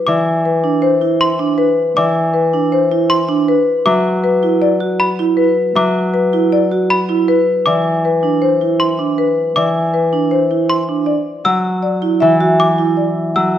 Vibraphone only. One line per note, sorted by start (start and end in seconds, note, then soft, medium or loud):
0.64 0.88 D4 medium
1.02 1.26 E4 medium
1.39 1.64 D4 medium
2.53 2.78 D4 medium
2.91 3.16 E4 medium
3.29 3.54 D4 medium
4.43 4.68 E4 medium
4.80 5.06 F#4 medium
5.19 5.44 E4 medium
6.33 6.58 E4 medium
6.71 6.96 F#4 medium
7.09 7.34 E4 medium
8.23 8.48 D4 medium
8.61 8.86 E4 medium
8.99 9.24 D4 medium
10.13 10.37 D4 medium
10.51 10.75 E4 medium
10.89 11.13 D4 medium
12.02 12.27 E4 medium
12.41 12.65 F#4 medium
12.78 13.03 E4 medium